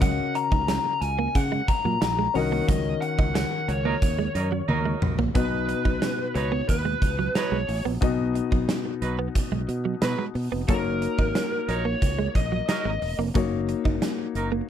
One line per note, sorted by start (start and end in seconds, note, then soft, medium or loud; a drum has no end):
0.00 0.18 C#2 medium
0.00 0.65 C#3 medium
0.00 0.11 F#3 medium
0.00 2.31 C#4 medium
0.00 2.31 F#4 medium
0.00 2.31 A#4 medium
0.00 2.32 D#5 medium
0.00 0.36 F#5 loud
0.00 kick loud
0.00 closed hi-hat loud
0.35 0.67 A#5 loud
0.35 muted clean electric guitar stroke soft
0.35 closed hi-hat medium
0.52 0.77 C#2 medium
0.52 0.61 D#4 medium
0.52 kick medium
0.68 0.78 C#4 medium
0.68 1.00 A#5 loud
0.68 snare loud
0.68 closed hi-hat medium
0.68 tambourine medium
0.85 muted clean electric guitar stroke soft
1.01 1.27 C#2 medium
1.01 1.36 G#5 loud
1.01 closed hi-hat medium
1.19 1.28 A#3 medium
1.35 1.60 C#3 loud
1.35 1.70 F#5 loud
1.35 kick medium
1.35 closed hi-hat medium
1.52 1.61 G#3 medium
1.68 2.01 A#5 loud
1.68 muted clean electric guitar stroke soft
1.68 kick medium
1.68 closed hi-hat medium
1.85 1.98 A#2 medium
1.85 1.95 F#3 medium
2.02 2.27 A#1 loud
2.02 2.33 A#5 loud
2.02 snare loud
2.02 closed hi-hat medium
2.02 tambourine medium
2.19 2.28 G#3 medium
2.34 2.60 C2 medium
2.34 3.31 D#3 medium
2.34 4.97 C#4 medium
2.34 4.98 F#4 medium
2.34 4.98 A#4 medium
2.34 4.99 D#5 medium
2.34 2.68 F#5 loud
2.34 muted clean electric guitar stroke soft
2.34 open hi-hat medium
2.52 2.61 A#3 medium
2.68 2.93 C#2 loud
2.68 2.78 F#3 medium
2.68 3.01 D#5 loud
2.68 kick loud
2.68 closed hi-hat loud
3.02 3.34 F#5 medium
3.02 muted clean electric guitar stroke soft
3.02 closed hi-hat medium
3.19 3.44 C#2 medium
3.19 3.28 D#4 medium
3.19 kick loud
3.35 3.45 C#4 medium
3.35 3.69 F#5 loud
3.35 snare loud
3.35 closed hi-hat medium
3.35 tambourine medium
3.52 muted clean electric guitar stroke soft
3.68 3.93 C#2 medium
3.68 4.98 C#5 medium
3.68 closed hi-hat medium
3.85 3.96 F#3 medium
3.85 3.95 A#3 medium
3.85 3.96 D#4 medium
3.85 3.96 A#4 loud
4.02 4.27 D#2 medium
4.02 kick medium
4.02 closed hi-hat medium
4.19 4.28 G#3 medium
4.35 4.60 F#2 medium
4.35 4.49 F#3 medium
4.35 4.49 D#4 medium
4.35 4.49 A#4 medium
4.35 muted clean electric guitar stroke soft
4.35 closed hi-hat medium
4.52 4.61 F#3 medium
4.68 4.93 D#2 loud
4.68 5.16 F#3 loud
4.68 5.16 D#4 medium
4.68 5.16 A#4 loud
4.68 high tom medium
4.85 4.95 G#3 medium
5.02 5.27 A#1 medium
5.02 muted clean electric guitar stroke soft
5.02 mid tom medium
5.19 5.28 A#3 medium
5.19 floor tom medium
5.34 5.73 B1 loud
5.34 6.31 B2 medium
5.34 7.97 B3 medium
5.34 5.45 B3 medium
5.34 7.98 D#4 medium
5.34 7.98 F#4 medium
5.34 6.35 B4 medium
5.34 7.99 D#5 medium
5.34 kick loud
5.34 closed hi-hat medium
5.69 muted clean electric guitar stroke soft
5.69 closed hi-hat medium
5.85 5.98 B1 medium
5.85 5.95 D#4 medium
5.85 kick medium
6.02 6.11 C#4 medium
6.02 snare loud
6.02 closed hi-hat medium
6.19 muted clean electric guitar stroke soft
6.35 6.60 C#2 medium
6.35 6.49 F#3 medium
6.35 6.49 D#4 medium
6.35 6.49 B4 medium
6.35 6.69 C#5 loud
6.35 closed hi-hat medium
6.52 6.61 B3 medium
6.69 6.94 D#2 medium
6.69 7.36 B4 medium
6.69 kick medium
6.69 closed hi-hat medium
6.85 6.95 G#3 medium
7.02 7.27 C#2 medium
7.02 muted clean electric guitar stroke soft
7.02 kick medium
7.02 closed hi-hat medium
7.19 7.28 F#3 medium
7.35 7.57 F#3 medium
7.35 7.57 D#4 medium
7.35 7.57 B4 loud
7.35 7.82 C#5 medium
7.35 snare loud
7.35 closed hi-hat medium
7.52 7.64 B1 medium
7.52 7.61 G#3 medium
7.69 7.81 A1 medium
7.69 muted clean electric guitar stroke soft
7.69 open hi-hat medium
7.85 7.98 A#1 medium
7.85 7.95 B3 medium
8.01 8.39 B1 loud
8.01 8.98 B2 medium
8.01 10.64 B3 medium
8.01 8.11 B3 medium
8.01 10.64 D#4 medium
8.01 10.65 F#4 medium
8.01 10.65 D#5 medium
8.01 kick loud
8.01 closed hi-hat medium
8.35 muted clean electric guitar stroke soft
8.35 closed hi-hat medium
8.52 8.64 B1 medium
8.52 8.61 D#4 medium
8.52 kick medium
8.69 8.78 C#4 medium
8.69 snare loud
8.69 closed hi-hat medium
8.85 muted clean electric guitar stroke soft
9.02 9.27 B1 medium
9.02 9.16 F#3 medium
9.02 9.16 D#4 medium
9.02 9.16 B4 medium
9.02 closed hi-hat medium
9.19 9.28 B3 medium
9.35 kick medium
9.35 closed hi-hat medium
9.52 9.64 B1 medium
9.52 9.61 G#3 medium
9.69 9.94 B2 medium
9.69 muted clean electric guitar stroke soft
9.69 closed hi-hat medium
9.85 9.95 F#3 medium
10.02 10.14 B2 loud
10.02 10.23 F#3 medium
10.02 10.23 D#4 medium
10.02 10.23 B4 loud
10.02 snare loud
10.02 closed hi-hat medium
10.19 10.28 G#3 medium
10.35 10.48 B2 medium
10.35 muted clean electric guitar stroke soft
10.35 open hi-hat medium
10.52 10.64 F1 medium
10.52 10.61 B3 medium
10.68 11.06 F#1 loud
10.68 10.78 F#3 medium
10.68 13.31 A#3 medium
10.68 13.31 D#4 medium
10.68 13.32 F#4 medium
10.68 11.72 A#4 medium
10.68 13.32 C#5 medium
10.68 kick loud
10.68 closed hi-hat medium
11.02 muted clean electric guitar stroke soft
11.02 closed hi-hat medium
11.18 11.31 G#1 medium
11.18 11.28 D#4 medium
11.18 kick medium
11.35 11.45 C#4 medium
11.35 snare loud
11.35 closed hi-hat medium
11.52 muted clean electric guitar stroke soft
11.68 11.93 A#1 medium
11.68 11.83 F#3 medium
11.68 11.83 D#4 medium
11.68 11.83 A#4 medium
11.68 12.35 C#5 loud
11.68 closed hi-hat medium
11.85 11.95 A#3 medium
12.02 12.27 C#2 loud
12.02 kick medium
12.02 closed hi-hat medium
12.19 12.28 G#3 medium
12.35 12.60 A#1 medium
12.35 12.68 D#5 loud
12.35 muted clean electric guitar stroke soft
12.35 kick medium
12.35 closed hi-hat medium
12.52 12.61 F#3 medium
12.69 12.90 F#3 loud
12.69 12.90 D#4 medium
12.69 12.90 A#4 loud
12.69 13.15 D#5 medium
12.69 snare loud
12.69 closed hi-hat medium
12.85 12.98 G#1 medium
12.85 12.95 G#3 medium
13.02 13.14 E1 medium
13.02 muted clean electric guitar stroke soft
13.02 open hi-hat medium
13.19 13.31 F1 medium
13.19 13.28 A#3 medium
13.34 13.73 F#1 loud
13.34 13.45 F#3 medium
13.34 14.69 A#3 medium
13.34 14.69 D#4 medium
13.34 14.69 F#4 medium
13.34 14.69 C#5 medium
13.34 kick loud
13.34 closed hi-hat medium
13.69 muted clean electric guitar stroke soft
13.69 closed hi-hat medium
13.85 13.98 F#1 medium
13.85 13.95 D#4 medium
13.85 kick medium
14.02 14.11 C#4 medium
14.02 snare loud
14.02 closed hi-hat medium
14.19 muted clean electric guitar stroke soft
14.35 14.60 F#1 medium
14.35 14.49 F#3 medium
14.35 14.49 D#4 medium
14.35 14.49 A#4 medium
14.35 closed hi-hat medium
14.52 14.61 A#3 medium